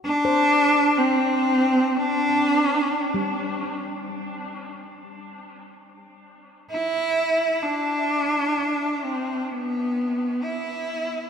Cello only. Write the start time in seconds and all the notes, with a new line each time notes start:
0.05 D4
0.98 C4
1.96 D4
6.70 E4
7.63 D4
9.04 C4
9.51 B3
10.43 E4